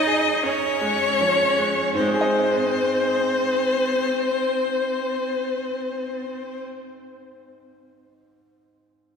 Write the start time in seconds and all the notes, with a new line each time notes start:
Already playing: G#2 C#4 D#4 C#5 D#5 G#5
0.07 G#4
0.43 C#4 C#5
0.81 G#3
1.21 F3
1.58 G#3
1.93 G#2 C4 C5
2.00 G#3
2.07 D#4
2.14 G#4
2.21 D#5